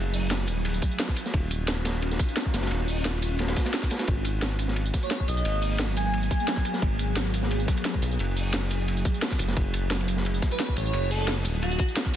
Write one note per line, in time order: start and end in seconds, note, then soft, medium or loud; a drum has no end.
0.00 0.50 F#1 loud
0.00 0.45 F#3 medium
0.00 0.45 A3 medium
0.00 0.45 E4 medium
0.00 0.45 G#4 loud
0.14 closed hi-hat medium
0.14 open hi-hat medium
0.14 tambourine medium
0.31 snare loud
0.31 closed hi-hat medium
0.31 ride medium
0.47 0.81 D#1 loud
0.47 4.05 C#4 medium
0.47 4.04 D#4 medium
0.47 4.04 F4 medium
0.47 4.04 F#4 loud
0.47 closed hi-hat medium
0.47 ride medium
0.47 tambourine medium
0.65 closed hi-hat medium
0.65 ride medium
0.74 tambourine soft
0.82 kick loud
0.82 closed hi-hat medium
0.82 ride medium
0.82 tambourine medium
0.91 tambourine soft
1.00 snare loud
1.00 closed hi-hat medium
1.00 ride medium
1.09 kick medium
1.09 snare soft
1.16 closed hi-hat medium
1.16 ride medium
1.16 tambourine medium
1.26 snare medium
1.26 tambourine soft
1.34 2.18 D#1 loud
1.34 kick loud
1.34 closed hi-hat medium
1.34 ride medium
1.51 closed hi-hat medium
1.51 ride medium
1.51 tambourine medium
1.68 snare loud
1.68 closed hi-hat medium
1.68 ride medium
1.77 ride soft
1.85 snare loud
1.85 closed hi-hat medium
1.85 ride medium
1.85 tambourine medium
1.94 ride soft
2.02 closed hi-hat medium
2.02 ride medium
2.11 snare soft
2.11 tambourine soft
2.19 kick loud
2.19 closed hi-hat medium
2.19 ride medium
2.19 tambourine medium
2.29 tambourine soft
2.36 snare loud
2.36 closed hi-hat medium
2.36 ride medium
2.46 kick medium
2.54 2.69 F#1 loud
2.54 snare loud
2.54 closed hi-hat medium
2.54 ride medium
2.54 tambourine medium
2.63 snare medium
2.63 ride medium
2.63 tambourine soft
2.67 snare medium
2.67 ride medium
2.71 3.55 D#1 loud
2.71 closed hi-hat medium
2.71 ride loud
2.88 closed hi-hat loud
2.88 open hi-hat medium
2.88 tambourine medium
3.05 snare loud
3.05 closed hi-hat medium
3.05 ride medium
3.22 closed hi-hat loud
3.22 ride medium
3.22 tambourine medium
3.39 snare loud
3.39 closed hi-hat medium
3.39 ride medium
3.48 snare loud
3.48 ride medium
3.48 tambourine soft
3.56 kick loud
3.56 snare loud
3.56 closed hi-hat medium
3.56 ride medium
3.56 tambourine medium
3.66 snare loud
3.66 ride medium
3.66 tambourine soft
3.74 snare loud
3.74 closed hi-hat medium
3.74 ride medium
3.83 kick medium
3.83 snare soft
3.91 snare loud
3.91 closed hi-hat medium
3.91 ride medium
3.91 tambourine medium
3.99 snare loud
3.99 ride medium
3.99 tambourine soft
4.07 4.93 G#1 loud
4.07 11.41 F#3 medium
4.07 8.16 A#3 medium
4.07 8.16 B3 medium
4.07 11.41 G#4 loud
4.07 kick loud
4.07 closed hi-hat medium
4.07 ride medium
4.25 closed hi-hat loud
4.25 ride medium
4.25 tambourine medium
4.42 snare loud
4.42 closed hi-hat medium
4.42 ride medium
4.52 ride soft
4.59 closed hi-hat medium
4.59 ride medium
4.59 tambourine medium
4.68 snare soft
4.76 closed hi-hat medium
4.76 ride medium
4.86 tambourine soft
4.94 kick loud
4.94 snare soft
4.94 closed hi-hat loud
4.94 ride medium
4.94 tambourine medium
5.02 5.23 C#5 medium
5.02 ride soft
5.02 tambourine soft
5.11 snare loud
5.11 closed hi-hat medium
5.11 ride medium
5.20 kick medium
5.28 5.44 B1 loud
5.28 5.76 D#5 loud
5.28 closed hi-hat loud
5.28 ride medium
5.28 tambourine medium
5.37 tambourine soft
5.45 6.30 G#1 loud
5.45 closed hi-hat medium
5.45 ride medium
5.62 closed hi-hat loud
5.62 open hi-hat medium
5.62 tambourine medium
5.79 snare loud
5.79 closed hi-hat medium
5.79 ride medium
5.97 6.17 G#5 medium
5.97 closed hi-hat medium
5.97 ride medium
5.97 tambourine medium
6.14 closed hi-hat medium
6.14 ride medium
6.23 6.71 G#5 medium
6.23 tambourine soft
6.31 kick loud
6.31 closed hi-hat loud
6.31 ride medium
6.31 tambourine medium
6.40 tambourine soft
6.48 snare loud
6.48 closed hi-hat medium
6.48 ride medium
6.57 kick medium
6.57 snare soft
6.65 closed hi-hat loud
6.65 ride medium
6.65 tambourine medium
6.74 snare medium
6.74 tambourine soft
6.82 7.67 G#1 loud
6.82 kick loud
6.82 closed hi-hat medium
6.82 ride medium
6.99 closed hi-hat loud
6.99 ride medium
6.99 tambourine medium
7.16 snare loud
7.16 closed hi-hat medium
7.16 ride medium
7.26 ride soft
7.34 closed hi-hat medium
7.34 ride medium
7.34 tambourine medium
7.43 snare soft
7.51 closed hi-hat medium
7.51 ride medium
7.60 tambourine soft
7.68 kick loud
7.68 snare soft
7.68 closed hi-hat loud
7.68 ride medium
7.68 tambourine medium
7.77 ride soft
7.77 tambourine soft
7.85 snare loud
7.85 closed hi-hat medium
7.85 ride medium
7.94 kick medium
8.02 8.18 B1 loud
8.02 closed hi-hat loud
8.02 ride medium
8.02 tambourine medium
8.11 tambourine soft
8.19 9.04 F#1 loud
8.19 11.42 A3 medium
8.19 11.42 E4 medium
8.19 closed hi-hat medium
8.19 ride medium
8.37 closed hi-hat medium
8.37 open hi-hat medium
8.37 tambourine medium
8.53 snare loud
8.53 closed hi-hat medium
8.53 ride medium
8.71 closed hi-hat medium
8.71 ride medium
8.71 tambourine medium
8.88 closed hi-hat medium
8.88 ride medium
8.97 tambourine soft
9.05 kick loud
9.05 closed hi-hat medium
9.05 ride medium
9.05 tambourine medium
9.14 tambourine soft
9.22 snare loud
9.22 closed hi-hat medium
9.22 ride medium
9.31 kick medium
9.31 snare soft
9.39 9.55 F#1 medium
9.39 closed hi-hat loud
9.39 ride medium
9.39 tambourine medium
9.48 snare medium
9.48 tambourine soft
9.57 10.41 F#1 loud
9.57 kick loud
9.57 closed hi-hat medium
9.57 ride medium
9.74 closed hi-hat medium
9.74 ride medium
9.74 tambourine medium
9.90 snare loud
9.90 closed hi-hat medium
9.90 ride medium
10.01 ride soft
10.08 closed hi-hat medium
10.08 ride medium
10.08 tambourine medium
10.17 snare soft
10.25 closed hi-hat medium
10.25 ride medium
10.34 tambourine soft
10.42 kick loud
10.42 snare soft
10.42 closed hi-hat medium
10.42 ride medium
10.42 tambourine medium
10.51 10.72 B4 medium
10.51 ride soft
10.51 tambourine soft
10.59 snare loud
10.59 closed hi-hat medium
10.59 ride medium
10.69 kick medium
10.76 10.92 A1 loud
10.76 11.10 C#5 medium
10.76 closed hi-hat medium
10.76 ride medium
10.76 tambourine medium
10.86 tambourine soft
10.93 11.47 F#1 loud
10.93 closed hi-hat medium
10.93 ride medium
11.11 11.32 A4 medium
11.11 closed hi-hat medium
11.11 open hi-hat medium
11.11 tambourine medium
11.28 snare loud
11.28 closed hi-hat medium
11.28 ride medium
11.45 11.78 D#1 loud
11.45 12.16 F#3 medium
11.45 12.16 C#4 medium
11.45 12.16 D#4 medium
11.45 12.16 F#4 loud
11.45 closed hi-hat medium
11.45 ride medium
11.45 tambourine medium
11.62 11.83 F#4 loud
11.62 closed hi-hat medium
11.62 ride medium
11.71 tambourine soft
11.78 kick loud
11.78 closed hi-hat medium
11.78 ride medium
11.78 tambourine medium
11.89 tambourine soft
11.96 snare loud
11.96 closed hi-hat medium
11.96 ride medium
12.06 kick medium
12.06 snare soft